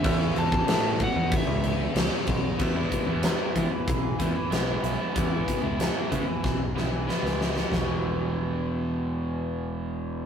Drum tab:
CC |x-x-x-x-x-x-x-x-|x---------------|----------------|----------------|
HH |----------------|--x-x-x-x-x-x-x-|x-x-x-x---------|----------------|
SD |----o-------o---|----o-------o---|----o---o-o-oooo|o---------------|
FT |----------------|----------------|----------------|o---------------|
BD |o--o--o-o-----o-|o-o---o-o-o-----|o-o---o-o-------|----------------|